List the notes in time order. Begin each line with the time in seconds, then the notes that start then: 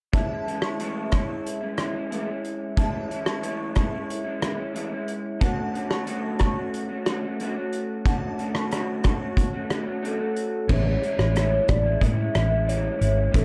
0.12 A2 E3 G#3 C#4 E4 E5 A5, kick, closed hi-hat
0.30 G#3 C#4 E4
0.46 E3 G#3 C#4 E4, closed hi-hat
0.62 G#3 C#4 E4 A5 C#6, cross-stick
0.79 A2 E3 G#3 C#4 E4, closed hi-hat
1.11 E3 G#3 C#4 E4 A5 C#6, kick, cross-stick, closed hi-hat
1.28 G#3 C#4 E4
1.46 closed hi-hat
1.61 G#3 C#4 E4
1.77 E3 G#3 C#4 E4, cross-stick, closed hi-hat
1.94 G#3 C#4 E4
2.10 A2 E3 G#3 C#4 E4, closed hi-hat
2.27 G#3 C#4 E4
2.44 closed hi-hat
2.76 A2 E3 G#3 C#4 E4 E5 A5, kick, closed hi-hat
3.09 E3 G#3 C#4 E4, closed hi-hat
3.25 G#3 C#4 E4 A5 C#6, cross-stick
3.41 A2 E3 G#3 C#4 E4, closed hi-hat
3.74 E3 G#3 C#4 E4 A5 C#6, kick, cross-stick, closed hi-hat
3.90 G#3 C#4 E4
4.10 closed hi-hat
4.24 G#3 C#4 E4
4.40 E3 G#3 C#4 E4, cross-stick, closed hi-hat
4.57 G#3 C#4 E4
4.73 A2 E3 G#3 C#4 E4, closed hi-hat
4.91 G#3 C#4 E4
5.08 closed hi-hat
5.40 D3 A3 C#4 F#4 F#5 A5, kick, closed hi-hat
5.73 D3 A3 C#4 F#4, closed hi-hat
5.90 A3 C#4 F#4 A5 C#6, cross-stick
6.06 D3 A3 C#4 F#4, closed hi-hat
6.39 D3 A3 C#4 F#4 A5 C#6, kick, cross-stick, closed hi-hat
6.56 A3 C#4 F#4
6.74 closed hi-hat
6.89 A3 C#4 F#4
7.05 D3 A3 C#4 F#4, cross-stick, closed hi-hat
7.23 A3 C#4 F#4
7.40 D3 A3 C#4 F#4, closed hi-hat
7.56 A3 C#4 F#4
7.72 closed hi-hat
8.06 D3 A3 C#4 F#4 F#5 A5, kick, closed hi-hat
8.39 D3 A3 C#4 F#4, closed hi-hat
8.54 A3 C#4 F#4 A5 C#6, cross-stick
8.71 D3 A3 C#4 F#4, cross-stick, closed hi-hat
9.03 D3 A3 C#4 F#4 A5 C#6, kick, cross-stick, closed hi-hat
9.21 A3 C#4 F#4
9.37 kick, closed hi-hat
9.53 A3 C#4 F#4
9.69 D3 A3 C#4 F#4, cross-stick, closed hi-hat
9.85 A3 C#4 F#4
10.02 D3 A3 C#4 F#4 A4, closed hi-hat
10.19 A3 C#4 F#4
10.36 closed hi-hat
10.68 A1 A2 E3 G#3 C#4 E4 C#5, kick, crash
11.01 E3 G#3 C#4 E4, closed hi-hat
11.17 A1 G#3 C#4 E4, cross-stick
11.34 A2 E3 G#3 C#4 E4 C#5, cross-stick, closed hi-hat
11.68 A1 D5, kick, cross-stick, closed hi-hat
11.83 G#3 C#4 E4
12.00 A2 E3 G#3 C#4 E4 E5, kick, closed hi-hat
12.17 G#3 C#4 E4
12.33 A1 E3 G#3 C#4 E4, cross-stick, closed hi-hat
12.49 G#3 C#4 E4
12.67 A2 E3 G#3 C#4 E4 C#5, closed hi-hat
12.98 G#1 E3 G#3 C#4 E4, closed hi-hat
13.15 G#3 C#4 E4
13.31 A1 A2 E3 C#4 E4, kick, closed hi-hat
13.36 A4